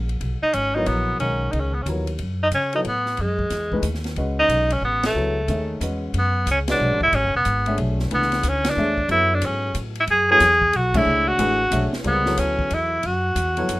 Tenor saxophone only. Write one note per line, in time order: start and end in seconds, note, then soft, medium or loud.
0.43 0.56 D#4 medium
0.54 0.77 C#4 medium
0.75 0.89 D#4 medium
0.87 1.19 B3 medium
1.20 1.53 C#4 medium
1.52 1.61 D#4 medium
1.60 1.75 C#4 medium
1.74 1.84 B3 medium
1.82 1.87 C#4 medium
2.43 2.48 D#4 medium
2.54 2.73 C#4 medium
2.75 2.80 D#4 medium
2.88 3.23 B3 medium
3.21 3.86 G#3 medium
4.39 4.74 D#4 medium
4.73 4.84 C#4 medium
4.85 5.03 B3 medium
5.06 5.79 A3 medium
6.19 6.47 B3 medium
6.51 6.60 C#4 medium
6.71 7.00 D4 medium
7.03 7.17 E4 loud
7.15 7.35 C#4 medium
7.36 7.77 B3 medium
8.15 8.50 B3 medium
8.48 8.71 C#4 medium
8.70 9.11 D4 medium
9.11 9.36 E4 medium
9.34 9.47 D4 medium
9.46 9.77 C#4 medium
10.00 10.05 E4 medium
10.11 10.29 G#4 medium
10.31 10.78 G#4 loud
10.76 10.99 F#4 medium
10.98 11.30 E4 loud
11.28 11.93 F#4 loud
12.07 12.40 B3 medium
12.39 12.76 C#4 medium
12.74 13.08 E4 medium
13.06 13.80 F#4 medium